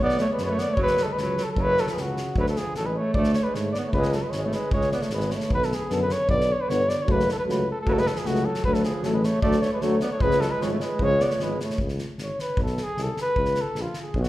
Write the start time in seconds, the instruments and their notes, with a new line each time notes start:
0.00 tuba B1, alto saxophone B3, flugelhorn D5
0.09 snare
0.18 alto saxophone A3, flugelhorn C#5, snare
0.30 alto saxophone G#3, flugelhorn B4
0.38 tuba F#2, alto saxophone G#3, snare
0.44 flugelhorn B4 C#5
0.48 alto saxophone A3, flugelhorn C#5
0.58 alto saxophone B3, flugelhorn D5, snare
0.69 alto saxophone A3
0.73 alto saxophone F#3, flugelhorn C#5, kick
0.78 tuba F#1
0.83 flugelhorn B4
0.87 snare
0.97 alto saxophone F#3, snare
1.03 alto saxophone G#3, flugelhorn A4
1.13 flugelhorn B4
1.18 tuba C#2, alto saxophone F#3, flugelhorn B4, snare
1.37 alto saxophone F#3, snare
1.43 alto saxophone F#3, flugelhorn A4
1.52 flugelhorn A4
1.56 tuba F#1, alto saxophone F#3, kick
1.62 flugelhorn B4
1.77 alto saxophone F#3, flugelhorn A4, snare
1.87 alto saxophone F3, snare
1.93 tuba C#2, flugelhorn G#4, snare
1.99 alto saxophone C#3, flugelhorn F#4
2.17 snare
2.36 tuba D2, alto saxophone F#3, flugelhorn B4, kick
2.47 alto saxophone F#3, flugelhorn A4, snare
2.56 alto saxophone F3, flugelhorn G#4, snare
2.75 tuba A1, alto saxophone F#3, flugelhorn A4, snare
2.86 alto saxophone G#3, flugelhorn B4
2.97 alto saxophone A3, flugelhorn C#5
3.14 tuba D2, alto saxophone A3, flugelhorn D5, kick
3.24 snare
3.33 flugelhorn C#5, snare
3.38 alto saxophone A3
3.43 alto saxophone G#3, flugelhorn B4
3.54 tuba G#2, flugelhorn C#5, snare
3.59 alto saxophone A3
3.72 flugelhorn D5, snare
3.77 alto saxophone B3, flugelhorn D5
3.83 alto saxophone B3, flugelhorn C#5
3.87 alto saxophone A3
3.93 tuba C#2, flugelhorn B4, kick
3.97 alto saxophone G#3
4.03 snare
4.12 alto saxophone F#3, flugelhorn A4, snare
4.22 alto saxophone G#3, flugelhorn B4
4.30 tuba G#1, flugelhorn C#5, snare
4.36 alto saxophone G#3
4.43 alto saxophone A3, flugelhorn C#5
4.52 alto saxophone G#3, flugelhorn B4, snare
4.71 tuba C#2, alto saxophone G#3, flugelhorn C#5, kick
4.81 snare
4.92 alto saxophone B3, flugelhorn D5, snare
5.01 alto saxophone A3, flugelhorn C#5, snare
5.10 tuba G#1, alto saxophone G#3, flugelhorn B4, snare
5.20 snare
5.30 alto saxophone A3, flugelhorn C#5, snare
5.40 snare
5.50 tuba B1, trombone D3, euphonium B3, kick
5.54 flugelhorn B4
5.63 flugelhorn A4, snare
5.72 flugelhorn G#4, snare
5.88 tuba F#2, trombone D3, euphonium B3, snare
5.93 flugelhorn A4
6.02 flugelhorn B4
6.09 flugelhorn C#5, snare
6.28 tuba B1, trombone D3, euphonium B3, flugelhorn D5, kick
6.40 snare
6.52 flugelhorn C#5
6.61 flugelhorn B4
6.66 tuba G1, trombone D3, euphonium B3, flugelhorn C#5, snare
6.89 flugelhorn D5, snare
7.02 flugelhorn C#5
7.06 tuba F#1, trombone F#3, euphonium A3, kick
7.11 flugelhorn B4
7.20 snare
7.29 flugelhorn A4, snare
7.39 flugelhorn B4
7.46 tuba C#2, trombone F#3, euphonium A3, snare
7.50 flugelhorn B4
7.71 flugelhorn A4
7.81 euphonium A3, flugelhorn A4
7.86 tuba F#1, trombone F#3, alto saxophone F#3, flugelhorn B4, kick
7.93 alto saxophone F#3, flugelhorn A4
7.98 alto saxophone G#3, flugelhorn B4, snare
8.06 alto saxophone F#3, flugelhorn A4, snare
8.16 alto saxophone F3, flugelhorn G#4, snare
8.25 tuba C#2, trombone F#3, euphonium A3, flugelhorn F#4, snare
8.29 alto saxophone C#3
8.35 snare
8.45 alto saxophone F#3, flugelhorn A4
8.54 snare
8.64 tuba D2, trombone F#3, alto saxophone F#3, euphonium A3, flugelhorn B4, kick
8.74 alto saxophone F#3, flugelhorn A4, snare
8.84 alto saxophone F3, flugelhorn G#4, snare
9.02 tuba A1, trombone F#3, alto saxophone F#3, euphonium A3, flugelhorn A4, snare
9.13 alto saxophone G#3, flugelhorn B4
9.23 alto saxophone A3, flugelhorn C#5, snare
9.41 tuba D2, trombone F#3, alto saxophone A3, euphonium A3, flugelhorn D5, kick
9.52 snare
9.62 alto saxophone A3, flugelhorn C#5, snare
9.73 alto saxophone G#3, flugelhorn B4
9.81 tuba D2, trombone F#3, euphonium A3, alto saxophone A3, flugelhorn C#5, snare
10.00 alto saxophone B3, flugelhorn D5, snare
10.12 alto saxophone A3, flugelhorn C#5
10.19 trombone F3, alto saxophone G#3, euphonium G#3, flugelhorn B4, kick
10.23 tuba C#2
10.31 snare
10.40 alto saxophone F#3, flugelhorn A4, snare
10.50 alto saxophone G#3, flugelhorn B4
10.60 tuba G#1, trombone F3, alto saxophone G#3, euphonium G#3, flugelhorn C#5, snare
10.70 alto saxophone A3, flugelhorn C#5
10.80 alto saxophone G#3, flugelhorn B4, snare
10.99 tuba C#2, trombone F3, euphonium G#3, alto saxophone G#3, kick
11.03 flugelhorn C#5
11.20 alto saxophone B3, flugelhorn D5, snare
11.29 alto saxophone A3, flugelhorn C#5, snare
11.39 tuba G#1, trombone F3, alto saxophone G#3, euphonium G#3, flugelhorn B4, snare
11.60 alto saxophone A3, flugelhorn C#5, snare
11.70 snare
11.78 tuba C#2, kick
11.88 snare
11.98 snare
12.18 tuba G#1, snare
12.23 flugelhorn C#5
12.39 flugelhorn B4, snare
12.57 tuba B1, kick
12.62 flugelhorn A4
12.67 snare
12.77 snare
12.83 flugelhorn G#4
12.97 tuba C2, snare
13.03 flugelhorn A4
13.17 snare
13.21 flugelhorn B4
13.36 tuba C#2, kick
13.45 snare
13.55 snare
13.61 flugelhorn A4
13.75 tuba A#1, snare
13.81 flugelhorn F4
13.94 snare
14.01 flugelhorn G#4
14.14 tuba B1, kick
14.21 flugelhorn F#4, snare